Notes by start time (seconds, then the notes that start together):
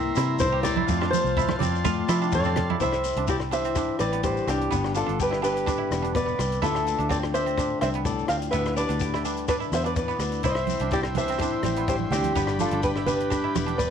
Already playing: C2 E3 A#3 C4 D4 E4 G4 E5 A#5 C6
0.14 G2 C3 E4, cross-stick, closed hi-hat, shekere
0.39 C2 E4 C5, kick, shekere
0.52 G4
0.63 D5, cross-stick, closed hi-hat, low conga, shekere
0.76 E4, high conga
0.86 F2 F3 A3 C4 F4 F5 A5, kick, shekere
1.01 D4, cross-stick
1.10 C5, closed hi-hat, high conga, shekere
1.24 C2, shekere
1.36 C4 E4, kick, shekere
1.49 cross-stick, high conga
1.59 F2 F3 C4 D5, closed hi-hat, low conga, shekere
1.75 shekere
1.85 A3 F4, kick, cross-stick, high conga, shekere
2.07 C3 F3 E4, cross-stick, closed hi-hat, shekere
2.22 D4, shekere
2.32 F2 F4 A4 D5, kick, shekere
2.44 C4, high conga, shekere
2.56 cross-stick, closed hi-hat, low conga
2.70 E4, high conga
2.79 C2 C3 E4 C5, kick, closed hi-hat, shekere
2.83 E5
2.92 cross-stick, shekere
3.03 C4, closed hi-hat, shekere
3.16 C2 D4, closed hi-hat
3.27 C4 E4 G4 D5, kick, closed hi-hat, shekere
3.40 cross-stick
3.51 E3 D4 C5 E5, closed hi-hat, shekere
3.64 C4, closed hi-hat, shekere
3.75 D4, kick, cross-stick, closed hi-hat, shekere
3.99 A1 G3 C4 B4 D5, cross-stick, closed hi-hat, shekere
4.12 B3, closed hi-hat
4.23 G2 G4 C5, kick, closed hi-hat, shekere
4.37 shekere
4.47 C2 C4 D4 G4, cross-stick, closed hi-hat, shekere
4.61 closed hi-hat
4.71 G1 G2 D3 B3 D4, kick, closed hi-hat, shekere
4.84 cross-stick
4.95 D4 F4 A4, closed hi-hat, shekere
5.06 G1 D4, closed hi-hat
5.20 G4 B4, kick, closed hi-hat, shekere
5.30 E4, cross-stick
5.42 D3 D4 G4 B4, closed hi-hat, shekere
5.57 closed hi-hat, shekere
5.66 D4, kick, cross-stick, closed hi-hat, shekere
5.78 E4
5.91 E1 B3, cross-stick, closed hi-hat, shekere
6.02 D4, closed hi-hat
6.15 B2 B4 D5, kick, closed hi-hat, shekere
6.26 B3, shekere
6.38 C2 C3, cross-stick, closed hi-hat, shekere
6.52 closed hi-hat, shekere
6.62 D2 D3 A3 D4 E4 F4 A4 E5, kick, closed hi-hat, shekere
6.75 cross-stick, shekere
6.86 F4, closed hi-hat, shekere
6.98 D2 D4, closed hi-hat
7.09 C4 F4 A4 D5, kick, closed hi-hat, shekere
7.23 cross-stick
7.32 A3 D4 C5 E5, closed hi-hat, shekere
7.46 C4, closed hi-hat, shekere
7.57 D4, kick, cross-stick, closed hi-hat, shekere
7.81 C2 C4 D4 C5 E5, cross-stick, closed hi-hat, shekere
7.94 B3, closed hi-hat
8.05 A2 A4 D5, kick, closed hi-hat, shekere
8.19 shekere
8.28 D2 C4 F4 D5 F5, cross-stick, closed hi-hat, shekere
8.42 closed hi-hat, shekere
8.51 D2 D3 B3 G4 B4 E5, kick, closed hi-hat, shekere
8.65 cross-stick, shekere
8.76 D4 G4 B4 D5, closed hi-hat, shekere
8.89 D2 D4, closed hi-hat, shekere
9.00 G4, kick, closed hi-hat, shekere
9.14 E4, cross-stick
9.25 G3 D4, closed hi-hat, shekere
9.36 closed hi-hat, shekere
9.48 D4 B4 D5, kick, cross-stick, closed hi-hat, shekere
9.60 E4, shekere
9.72 E2 B3 C5 E5, cross-stick, closed hi-hat, shekere
9.84 D4 B4 D5, closed hi-hat, shekere
9.96 E3 B4 D5, kick, closed hi-hat, shekere
10.08 B3, shekere
10.19 D2 D3, cross-stick, closed hi-hat, shekere
10.32 closed hi-hat, shekere
10.43 C2 E4 C5 E5 G5 C6, muted nylon-string guitar stroke, kick, closed hi-hat, shekere
10.55 cross-stick, shekere
10.67 C4, closed hi-hat, high conga, shekere
10.79 C2 D4, closed hi-hat
10.91 C4 E4 G4 D5, kick, closed hi-hat, shekere
11.03 cross-stick
11.15 E3 D4 C5 E5, closed hi-hat, high conga, low conga, shekere
11.28 C4, closed hi-hat
11.32 shekere
11.38 D4, kick, cross-stick, closed hi-hat, shekere
11.63 A1 G3 C4, cross-stick, closed hi-hat, high conga, shekere
11.76 B3, closed hi-hat
11.87 G2 G4 C5, kick, closed hi-hat, shekere
11.99 high conga
12.10 D2 C4 D4 G4, cross-stick, closed hi-hat, low conga, shekere
12.23 closed hi-hat, high conga, shekere
12.35 G1 G2 B3 D4 D5 B5, kick, closed hi-hat, shekere
12.47 cross-stick, shekere
12.59 D4 F4 A4, closed hi-hat, high conga, shekere
12.71 G1 D4, closed hi-hat
12.83 G4 B4, kick, closed hi-hat, shekere
12.96 E4, cross-stick
13.06 D3 D4 G4 B4, closed hi-hat, high conga, low conga, shekere
13.20 closed hi-hat
13.30 D4, kick, cross-stick, closed hi-hat, shekere
13.44 E4
13.54 E1 B3, cross-stick, closed hi-hat, high conga, shekere
13.66 D4, closed hi-hat
13.77 G2 B4 D5, kick, closed hi-hat, shekere